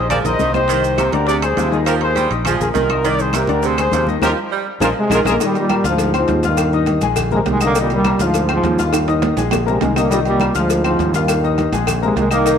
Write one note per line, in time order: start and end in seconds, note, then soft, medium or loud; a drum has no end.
0.00 0.23 A#1 medium
0.00 0.11 G#4 medium
0.00 0.10 C5 medium
0.10 0.26 F3 medium
0.10 0.22 G#3 medium
0.10 0.22 G#4 medium
0.10 0.17 A#4 medium
0.10 0.16 D5 loud
0.10 0.22 G#5 medium
0.10 high bongo medium
0.10 high conga soft
0.10 low conga medium
0.10 high timbale medium
0.10 claves medium
0.10 maracas medium
0.24 0.38 A#1 medium
0.24 0.49 A#3 medium
0.24 0.49 A#4 medium
0.24 0.52 C5 medium
0.24 0.53 D#5 medium
0.24 0.49 A#5 medium
0.24 high bongo soft
0.24 high conga soft
0.24 low conga medium
0.24 high timbale medium
0.24 maracas medium
0.39 1.08 C2 medium
0.39 0.55 D#3 medium
0.39 high bongo soft
0.39 low bongo medium
0.39 high conga medium
0.39 maracas medium
0.54 0.67 D#4 medium
0.54 1.09 G4 medium
0.54 1.09 C5 medium
0.54 0.67 D#5 medium
0.54 0.67 D#6 medium
0.54 high conga medium
0.54 low timbale medium
0.54 claves medium
0.54 maracas soft
0.68 0.84 D#3 medium
0.68 0.94 D#3 medium
0.68 0.94 D#4 medium
0.68 0.94 D#5 medium
0.68 high bongo medium
0.68 high conga soft
0.68 high timbale medium
0.68 maracas medium
0.83 high bongo soft
0.83 high conga soft
0.83 maracas medium
0.97 1.13 C3 medium
0.97 1.11 A#3 medium
0.97 1.11 A#4 medium
0.97 1.11 A#5 medium
0.97 high bongo medium
0.97 high conga medium
0.97 high timbale medium
0.97 claves medium
0.97 maracas medium
1.12 1.54 D2 medium
1.12 1.37 D3 medium
1.12 1.37 D4 medium
1.12 1.27 G4 medium
1.12 1.27 A#4 medium
1.12 1.38 D5 medium
1.12 high conga medium
1.12 high timbale medium
1.12 maracas soft
1.27 1.43 C3 medium
1.27 1.35 G#4 medium
1.27 1.35 D5 loud
1.27 high bongo medium
1.27 high conga soft
1.27 maracas medium
1.42 1.55 G#3 medium
1.42 1.70 G#4 medium
1.42 1.55 G#4 medium
1.42 1.71 C5 medium
1.42 1.55 G#5 medium
1.42 high bongo soft
1.42 high conga soft
1.42 high timbale medium
1.42 claves medium
1.42 maracas medium
1.57 2.25 D#2 medium
1.57 1.73 C3 medium
1.57 1.69 F3 medium
1.57 1.69 F4 medium
1.57 1.70 F5 medium
1.57 high bongo soft
1.57 low bongo medium
1.57 high conga medium
1.57 high timbale medium
1.57 maracas medium
1.71 1.96 D#3 medium
1.71 1.96 D#4 medium
1.71 1.79 F4 medium
1.71 1.79 G#4 medium
1.71 1.96 D#5 medium
1.71 high conga medium
1.71 maracas soft
1.85 2.01 F3 medium
1.85 1.94 G4 medium
1.85 1.94 A#4 medium
1.85 high bongo medium
1.85 high conga soft
1.85 high timbale medium
1.85 claves medium
1.85 maracas medium
2.01 2.26 A#3 medium
2.01 2.30 G#4 medium
2.01 2.26 A#4 medium
2.01 2.30 C5 loud
2.01 2.26 A#5 medium
2.01 high bongo soft
2.01 high conga soft
2.01 high timbale medium
2.15 2.31 G3 medium
2.15 high bongo medium
2.15 high conga medium
2.15 high timbale medium
2.15 maracas medium
2.31 2.58 A#1 medium
2.31 2.43 D#4 medium
2.31 2.43 D#5 medium
2.31 2.44 D#6 medium
2.31 high conga soft
2.31 high timbale medium
2.31 maracas soft
2.45 2.62 F3 medium
2.45 2.57 G#3 medium
2.45 2.60 F4 medium
2.45 2.58 G#4 medium
2.45 2.60 G#4 medium
2.45 2.58 G#5 medium
2.45 high bongo medium
2.45 high conga soft
2.45 low conga medium
2.45 high timbale medium
2.45 claves medium
2.45 maracas medium
2.60 2.74 A#1 medium
2.60 2.85 A#3 medium
2.60 2.68 F4 medium
2.60 2.68 G#4 medium
2.60 2.85 A#4 medium
2.60 2.85 A#5 medium
2.60 high bongo soft
2.60 high conga soft
2.60 low conga medium
2.60 maracas medium
2.74 3.43 C2 medium
2.74 2.90 D#3 medium
2.74 3.03 F4 medium
2.74 3.03 A#4 medium
2.74 high bongo soft
2.74 low bongo medium
2.74 high conga medium
2.74 high timbale medium
2.74 low timbale medium
2.74 maracas medium
2.89 3.02 D#4 medium
2.89 3.02 D#5 medium
2.89 3.02 D#6 medium
2.89 high bongo soft
2.89 high conga medium
2.89 high timbale medium
2.89 claves medium
2.89 maracas soft
3.04 3.20 D#3 medium
3.04 3.29 D#3 medium
3.04 3.29 D#4 medium
3.04 3.20 A#4 medium
3.04 3.20 D5 loud
3.04 3.29 D#5 medium
3.04 high bongo medium
3.04 high conga soft
3.04 high timbale medium
3.04 maracas medium
3.19 3.35 G#4 medium
3.19 3.35 C5 medium
3.19 high bongo soft
3.19 high conga soft
3.19 maracas medium
3.33 3.49 C3 medium
3.33 3.46 A#3 medium
3.33 3.63 G4 medium
3.33 3.46 A#4 medium
3.33 3.63 A#4 medium
3.33 3.46 A#5 medium
3.33 high bongo medium
3.33 high conga medium
3.33 high timbale loud
3.33 claves medium
3.33 maracas medium
3.47 3.90 D2 medium
3.47 3.73 D3 medium
3.47 3.73 D4 medium
3.47 3.73 D5 medium
3.47 high conga medium
3.47 high timbale medium
3.47 maracas soft
3.62 3.80 C3 medium
3.62 3.79 G#4 medium
3.62 3.80 C5 loud
3.62 high bongo medium
3.62 high conga soft
3.62 maracas medium
3.77 3.90 G#3 medium
3.77 3.91 G#4 medium
3.77 4.07 G#4 medium
3.77 4.07 C5 medium
3.77 3.91 G#5 medium
3.77 high bongo soft
3.77 high conga soft
3.77 high timbale loud
3.77 claves medium
3.77 maracas medium
3.91 4.20 D#2 medium
3.91 4.08 C3 medium
3.91 4.05 F3 medium
3.91 4.05 F4 medium
3.91 4.05 F5 medium
3.91 high bongo soft
3.91 low bongo medium
3.91 high conga medium
3.91 high timbale medium
3.91 maracas medium
4.07 4.20 D#3 medium
4.07 4.20 D#4 medium
4.07 4.20 D#5 medium
4.07 high bongo soft
4.07 high conga medium
4.07 maracas soft
4.22 4.33 D#2 medium
4.22 4.38 F3 medium
4.22 4.30 F4 loud
4.22 4.32 G4 loud
4.22 4.30 G4 loud
4.22 4.32 A#4 loud
4.22 4.30 A#4 loud
4.22 4.32 D#5 medium
4.22 low bongo medium
4.22 high conga loud
4.22 high timbale loud
4.22 claves medium
4.22 maracas loud
4.51 4.67 G3 medium
4.80 4.92 A#1 medium
4.80 4.96 F3 medium
4.80 4.89 F4 loud
4.80 4.88 G#4 medium
4.80 4.91 G#4 medium
4.80 4.91 A#4 loud
4.80 4.89 A#4 medium
4.80 4.91 D#5 loud
4.80 low bongo loud
4.80 high conga loud
4.80 high timbale loud
4.80 claves medium
4.80 maracas loud
4.98 5.11 C3 medium
4.98 5.11 G#3 loud
5.10 5.21 A#1 loud
5.10 5.26 D#3 medium
5.10 5.19 D#3 medium
5.10 5.19 G#3 loud
5.10 5.19 F4 loud
5.10 5.20 G#4 medium
5.10 5.19 G#4 medium
5.10 5.20 A#4 medium
5.10 5.19 A#4 loud
5.10 5.20 D#5 loud
5.10 low bongo loud
5.10 high conga medium
5.10 high timbale loud
5.10 claves medium
5.10 maracas loud
5.25 5.36 A#1 loud
5.25 5.41 D3 medium
5.25 5.34 F4 medium
5.25 5.35 G#4 medium
5.25 5.34 G#4 medium
5.25 5.35 A#4 medium
5.25 5.34 A#4 medium
5.25 5.35 D#5 loud
5.25 low bongo loud
5.25 high conga loud
5.25 high timbale medium
5.25 claves medium
5.25 maracas loud
5.29 5.41 A#3 medium
5.40 5.55 A#2 medium
5.40 5.64 D#3 medium
5.40 5.55 G3 loud
5.40 5.65 D#4 medium
5.40 5.65 D#5 medium
5.40 cowbell loud
5.40 high conga soft
5.40 low agogo medium
5.40 maracas loud
5.55 5.83 A#2 medium
5.55 5.84 G3 loud
5.55 high conga soft
5.55 low agogo medium
5.55 maracas soft
5.69 5.82 A#3 medium
5.69 5.82 A#4 medium
5.69 5.82 A#5 medium
5.69 cowbell medium
5.69 high conga loud
5.69 low timbale medium
5.69 low agogo loud
5.69 claves medium
5.69 maracas soft
5.84 6.25 D2 medium
5.84 6.14 G#2 medium
5.84 6.08 F4 medium
5.84 6.08 F5 medium
5.84 6.09 F6 medium
5.84 cowbell medium
5.84 maracas medium
5.88 6.16 F3 loud
5.98 cowbell loud
5.98 low agogo medium
5.98 maracas medium
6.14 6.42 G#2 medium
6.14 6.43 F3 loud
6.14 6.38 C4 medium
6.14 6.38 C5 medium
6.14 6.38 C6 medium
6.14 low agogo loud
6.14 claves medium
6.14 maracas soft
6.28 6.97 D#2 medium
6.28 cowbell medium
6.28 high conga medium
6.28 low timbale medium
6.28 maracas soft
6.43 7.03 G2 medium
6.43 7.04 D#3 medium
6.43 6.68 F4 medium
6.43 6.68 F5 medium
6.43 6.68 F6 medium
6.43 cowbell medium
6.43 high conga medium
6.43 maracas medium
6.57 cowbell loud
6.57 high conga soft
6.57 low agogo loud
6.57 claves medium
6.57 maracas loud
6.73 6.97 D#4 medium
6.73 6.97 D#5 medium
6.73 6.98 D#6 medium
6.73 maracas soft
6.86 cowbell medium
6.86 high conga medium
6.86 low timbale medium
6.86 low agogo loud
6.86 maracas soft
7.01 7.43 A#1 loud
7.01 7.26 G#3 medium
7.01 7.27 G#4 medium
7.01 7.27 G#5 medium
7.01 cowbell medium
7.01 high conga loud
7.01 low agogo medium
7.01 maracas medium
7.16 cowbell loud
7.16 high conga soft
7.16 low conga medium
7.16 low agogo loud
7.16 claves medium
7.16 maracas medium
7.31 7.39 C3 medium
7.31 7.39 G#3 loud
7.31 7.56 A#3 medium
7.31 7.56 A#4 medium
7.31 7.56 A#5 medium
7.31 high conga soft
7.31 low conga medium
7.31 maracas soft
7.46 8.14 C2 loud
7.46 7.61 D#3 medium
7.46 7.61 G#3 loud
7.46 cowbell medium
7.46 high conga medium
7.46 low timbale medium
7.46 low agogo medium
7.46 maracas soft
7.61 7.76 D3 medium
7.61 7.76 A#3 loud
7.61 7.73 D#4 medium
7.61 7.74 D#5 medium
7.61 7.73 D#6 medium
7.61 high conga soft
7.61 low agogo loud
7.61 claves medium
7.61 maracas medium
7.75 7.91 A#2 medium
7.75 8.00 D#3 medium
7.75 8.00 D#4 medium
7.75 8.00 D#5 medium
7.75 cowbell loud
7.75 low agogo medium
7.75 maracas medium
7.79 7.91 G3 loud
7.90 8.19 A#2 medium
7.90 low agogo medium
7.90 maracas soft
7.94 8.20 G3 loud
8.04 8.18 A#3 medium
8.04 8.17 A#4 medium
8.04 8.18 A#5 medium
8.04 cowbell medium
8.04 high conga medium
8.04 low timbale medium
8.04 low agogo loud
8.04 claves medium
8.04 maracas soft
8.19 8.61 D2 loud
8.19 8.50 G#2 medium
8.19 8.51 F3 loud
8.19 8.44 F4 medium
8.19 8.44 F5 medium
8.19 8.45 F6 medium
8.19 cowbell medium
8.19 maracas medium
8.34 cowbell loud
8.34 low agogo medium
8.34 maracas medium
8.49 8.78 G#2 medium
8.49 8.78 F3 loud
8.49 8.73 C4 medium
8.49 8.74 C5 medium
8.49 8.74 C6 medium
8.49 high conga soft
8.49 low agogo loud
8.49 claves medium
8.49 maracas soft
8.63 9.32 D#2 loud
8.63 cowbell medium
8.63 high conga medium
8.63 low timbale medium
8.63 maracas soft
8.78 9.39 G2 medium
8.78 9.03 F4 medium
8.78 9.03 F5 medium
8.78 9.03 F6 medium
8.78 cowbell medium
8.78 high conga medium
8.78 maracas medium
8.83 9.39 D#3 medium
8.93 cowbell loud
8.93 high timbale medium
8.93 low agogo loud
8.93 claves medium
8.93 maracas loud
9.08 9.32 D#4 medium
9.08 9.32 D#5 medium
9.08 9.32 D#6 medium
9.08 high conga soft
9.08 high timbale loud
9.08 maracas soft
9.22 cowbell medium
9.22 high conga loud
9.22 low timbale loud
9.22 low agogo medium
9.22 maracas soft
9.37 9.78 A#1 loud
9.37 9.62 G#3 medium
9.37 9.62 G#4 medium
9.37 9.62 G#5 medium
9.37 cowbell medium
9.37 high conga medium
9.37 high timbale medium
9.37 low agogo medium
9.37 maracas medium
9.51 cowbell loud
9.51 high bongo loud
9.51 high conga soft
9.51 low conga medium
9.51 low timbale medium
9.51 low agogo loud
9.51 claves medium
9.51 maracas medium
9.66 9.81 C3 medium
9.66 9.79 G#3 loud
9.66 9.91 A#3 medium
9.66 9.91 A#4 medium
9.66 9.91 A#5 medium
9.66 high bongo medium
9.66 maracas soft
9.80 10.50 C2 medium
9.80 9.95 D#3 medium
9.80 9.95 G#3 loud
9.80 cowbell medium
9.80 low bongo loud
9.80 high conga medium
9.80 low timbale medium
9.80 low agogo medium
9.80 maracas soft
9.96 10.11 D3 medium
9.96 10.11 A#3 medium
9.96 10.08 D#4 medium
9.96 10.08 D#5 medium
9.96 10.09 D#6 medium
9.96 low bongo medium
9.96 high conga soft
9.96 low timbale medium
9.96 low agogo loud
9.96 claves medium
9.96 maracas medium
10.11 10.18 A#2 medium
10.11 10.35 D#3 medium
10.11 10.17 G3 loud
10.11 10.35 D#4 medium
10.11 10.36 D#5 medium
10.11 cowbell loud
10.11 low agogo medium
10.11 maracas loud
10.25 10.53 A#2 medium
10.25 10.53 G3 loud
10.25 high conga soft
10.25 low agogo medium
10.25 maracas soft
10.40 10.52 A#3 medium
10.40 10.53 A#4 medium
10.40 10.53 A#5 medium
10.40 cowbell medium
10.40 high conga loud
10.40 low timbale medium
10.40 low agogo loud
10.40 claves medium
10.40 maracas soft
10.55 10.96 D2 medium
10.55 10.83 G#2 medium
10.55 10.83 F3 loud
10.55 10.79 F4 medium
10.55 10.79 F5 medium
10.55 10.79 F6 medium
10.55 cowbell medium
10.55 maracas medium
10.70 cowbell loud
10.70 low agogo medium
10.70 maracas medium
10.84 11.12 G#2 medium
10.84 11.12 F3 loud
10.84 11.08 C4 medium
10.84 11.09 C5 medium
10.84 11.09 C6 medium
10.84 low agogo loud
10.84 claves medium
10.84 maracas soft
10.99 11.67 D#2 medium
10.99 cowbell medium
10.99 high conga medium
10.99 low timbale medium
10.99 maracas soft
11.14 11.73 G2 medium
11.14 11.73 D#3 medium
11.14 11.39 F4 medium
11.14 11.39 F5 medium
11.14 11.39 F6 medium
11.14 cowbell medium
11.14 high conga medium
11.14 maracas medium
11.28 cowbell loud
11.28 high conga soft
11.28 low agogo loud
11.28 claves medium
11.28 maracas loud
11.44 11.68 D#4 medium
11.44 11.68 D#5 medium
11.44 11.68 D#6 medium
11.44 high conga soft
11.44 maracas soft
11.58 cowbell medium
11.58 high conga medium
11.58 low timbale medium
11.58 low agogo medium
11.58 maracas soft
11.72 12.14 A#1 loud
11.72 11.97 G#3 medium
11.72 11.97 G#4 medium
11.72 11.98 G#5 medium
11.72 cowbell medium
11.72 high conga loud
11.72 low agogo medium
11.72 maracas medium
11.87 cowbell loud
11.87 high conga soft
11.87 low conga medium
11.87 low agogo loud
11.87 claves medium
11.87 maracas medium
12.02 12.16 C3 medium
12.02 12.16 G#3 loud
12.02 12.26 A#3 medium
12.02 12.27 A#4 medium
12.02 12.27 A#5 medium
12.02 high conga soft
12.02 maracas soft
12.16 12.58 C2 loud
12.16 12.31 D#3 medium
12.16 12.31 G#3 loud
12.16 cowbell medium
12.16 high conga medium
12.16 low timbale medium
12.16 low agogo medium
12.16 maracas soft
12.31 12.58 D#3 medium
12.31 12.58 A#3 loud
12.31 12.43 D#4 medium
12.31 12.43 D#5 medium
12.31 12.44 D#6 medium
12.31 high conga soft
12.31 low agogo loud
12.31 claves medium
12.31 maracas medium
12.45 12.58 D#3 medium
12.45 12.58 D#4 medium
12.45 12.58 D#5 medium
12.45 cowbell loud
12.45 high conga soft
12.45 low agogo medium
12.45 maracas medium